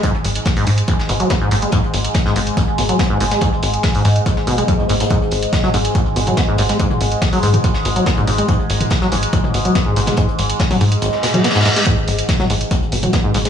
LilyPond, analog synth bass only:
\new Staff \with { instrumentName = "Analog synth bass" } { \clef bass \time 4/4 \key fis \dorian \tempo 4 = 142 r8 gis,,8 r8 gis,8 r8 gis,,8 r8 gis,,8 | r8 gis,,8 r8 gis,,8 r8 gis,,8 r8 gis,,8 | r8 gis,,8 r8 gis,8 r8 gis,,8 r8 gis,,8 | r8 gis,,8 r8 gis,,8 r8 gis,,8 r8 gis,,8 |
r8 gis,,8 r8 gis,8 r8 gis,,8 r8 gis,,8 | r8 gis,,8 r8 gis,,8 r8 gis,,8 r8 gis,,8 | r8 gis,,8 r8 gis,8 r2 | r8 gis,,8 r8 gis,,8 r8 gis,,8 r8 gis,,8 | }